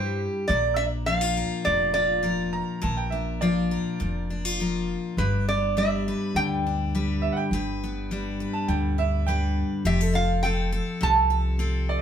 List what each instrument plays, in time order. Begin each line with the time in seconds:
Already playing: upright bass G2, steel-string acoustic guitar G2 G3 C4 E4 G4, upright piano C5
0.48 upright bass A#1, steel-string acoustic guitar A#2 A#4, resonator guitar played with a steel bar D5
0.76 steel-string acoustic guitar D4, resonator guitar played with a steel bar E5
1.06 steel-string acoustic guitar F3 D4, resonator guitar played with a steel bar F5
1.21 steel-string acoustic guitar F4
1.37 steel-string acoustic guitar A#4
1.65 upright bass F1, steel-string acoustic guitar A#2, resonator guitar played with a steel bar D5
1.94 steel-string acoustic guitar F4, resonator guitar played with a steel bar D5
2.23 steel-string acoustic guitar F3 A#4
2.53 upright piano A#5
2.82 upright bass A#1, steel-string acoustic guitar A#2 A#4, upright piano A5
2.97 upright piano G5
3.10 steel-string acoustic guitar D4, upright piano E5
3.41 steel-string acoustic guitar F3 F4, upright piano D5
3.71 steel-string acoustic guitar A#4
4.00 upright bass F1, steel-string acoustic guitar A#2
4.30 steel-string acoustic guitar D4
4.45 steel-string acoustic guitar F4
4.60 steel-string acoustic guitar F3 A#4
5.17 upright bass G1, steel-string acoustic guitar G2 D4, resonator guitar played with a steel bar B4
5.49 steel-string acoustic guitar B3, resonator guitar played with a steel bar D5
5.77 steel-string acoustic guitar G3 D4, resonator guitar played with a steel bar E5
6.08 steel-string acoustic guitar B4
6.34 upright bass D2, steel-string acoustic guitar D3, resonator guitar played with a steel bar G5
6.67 steel-string acoustic guitar D4
6.95 steel-string acoustic guitar G3 B4
7.22 upright piano E5
7.33 upright piano F#5
7.37 upright piano G5
7.51 upright bass G1, steel-string acoustic guitar G2 B4
7.84 steel-string acoustic guitar B3
8.11 steel-string acoustic guitar G3 D4
8.40 steel-string acoustic guitar B4
8.53 upright piano A5
8.68 upright bass D2, steel-string acoustic guitar D3, upright piano G5
8.98 steel-string acoustic guitar D4, upright piano E5
9.27 steel-string acoustic guitar G3 B4, upright piano G5
9.85 upright bass F1, steel-string acoustic guitar F3 G4, resonator guitar played with a steel bar E5
10.01 steel-string acoustic guitar A4
10.13 steel-string acoustic guitar F4, resonator guitar played with a steel bar F5
10.43 steel-string acoustic guitar C4 A4, resonator guitar played with a steel bar G5
10.72 steel-string acoustic guitar A4
11.01 upright bass C2, steel-string acoustic guitar C3, resonator guitar played with a steel bar A5
11.30 steel-string acoustic guitar A4
11.59 steel-string acoustic guitar C4 A4
11.89 upright piano D5
11.98 upright piano D#5